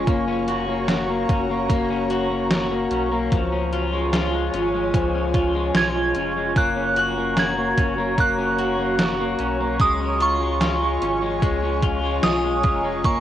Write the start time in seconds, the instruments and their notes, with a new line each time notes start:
Already playing: clean electric guitar C#4 F4, ambient pad C#5 C#6
0.07 sub bass F#1, clean electric guitar A#3, ambient pad F#4 A#5, kick, closed hi-hat
0.28 clean electric guitar C#4
0.48 clean electric guitar F#4, closed hi-hat
0.69 clean electric guitar A#3
0.88 clean electric guitar F#4, snare, closed hi-hat
1.09 clean electric guitar A#3
1.29 sub bass F#1, clean electric guitar C#4, kick, closed hi-hat
1.50 clean electric guitar A#3
1.70 sub bass F#1, clean electric guitar A#3, kick, closed hi-hat
1.90 clean electric guitar C#4
2.10 clean electric guitar F#4, closed hi-hat
2.31 clean electric guitar A#3
2.51 clean electric guitar F#4, snare, closed hi-hat
2.71 clean electric guitar A#3
2.90 sub bass B1, clean electric guitar C#4, closed hi-hat
3.12 clean electric guitar A#3
3.31 sub bass C#2, clean electric guitar F3, ambient pad F4 C#5 G#5 C#6, kick, closed hi-hat
3.52 clean electric guitar C#4
3.72 clean electric guitar F4, closed hi-hat
3.93 clean electric guitar G#3
4.13 clean electric guitar F4, snare, closed hi-hat
4.33 clean electric guitar G#3
4.53 sub bass G#1, clean electric guitar C#4, closed hi-hat
4.74 clean electric guitar G#3
4.94 sub bass C#2, clean electric guitar F3, kick, closed hi-hat
5.14 clean electric guitar C#4
5.34 clean electric guitar F4, kick, closed hi-hat
5.55 clean electric guitar G#3
5.75 sub bass B1, clean electric guitar F4, synth bell G#6, snare, closed hi-hat
5.96 clean electric guitar G#3
6.15 sub bass F1, clean electric guitar C#4, closed hi-hat
6.36 clean electric guitar G#3
6.56 sub bass F#1, clean electric guitar A#3, ambient pad F#4 A#5, vibraphone C#5, synth bell F#6, kick, closed hi-hat
6.76 clean electric guitar C#4
6.96 clean electric guitar F#4, synth bell F#6, closed hi-hat
7.17 clean electric guitar A#3
7.37 clean electric guitar F#4, synth bell G#6, snare, closed hi-hat
7.58 clean electric guitar A#3
7.77 sub bass F#1, clean electric guitar C#4, kick, closed hi-hat
7.98 clean electric guitar A#3
8.18 sub bass F#1, clean electric guitar A#3, synth bell F#6, kick, closed hi-hat
8.38 clean electric guitar C#4
8.59 clean electric guitar F#4, closed hi-hat
8.79 clean electric guitar A#3
8.99 clean electric guitar F#4, snare, closed hi-hat
9.20 clean electric guitar A#3
9.39 sub bass B1, clean electric guitar C#4, closed hi-hat
9.61 clean electric guitar A#3
9.80 sub bass C#2, clean electric guitar G#3, ambient pad F4 G#5, synth bell D#6, kick, closed hi-hat
10.01 clean electric guitar C#4
10.21 clean electric guitar F4, synth bell C#6, closed hi-hat
10.41 clean electric guitar G#3
10.61 clean electric guitar F4, snare, closed hi-hat
10.82 clean electric guitar G#3
11.01 sub bass G#1, clean electric guitar C#4, closed hi-hat
11.22 clean electric guitar G#3
11.42 sub bass C#2, clean electric guitar G#3, kick, closed hi-hat
11.63 clean electric guitar C#4
11.82 clean electric guitar F4, kick, closed hi-hat
12.04 clean electric guitar G#3
12.23 sub bass B1, clean electric guitar F4, vibraphone D#5, synth bell D#6, snare, closed hi-hat
12.44 clean electric guitar G#3
12.48 vibraphone G#5
12.63 sub bass F1, clean electric guitar C#4, kick, closed hi-hat
12.74 vibraphone A#5
12.84 clean electric guitar G#3
13.04 sub bass F#1, clean electric guitar A#3, ambient pad F#4 F#5, synth bell C#6, kick, closed hi-hat